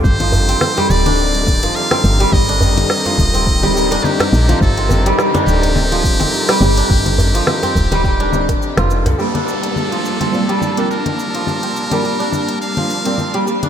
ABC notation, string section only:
X:1
M:4/4
L:1/8
Q:"Swing 16ths" 1/4=105
K:Gm
V:1 name="String section" clef=bass
[C,D,E,G,]8- | [C,D,E,G,]8- | [C,D,E,G,]8- | [C,D,E,G,]8 |
[G,B,Da]8- | [G,B,Da]8 |]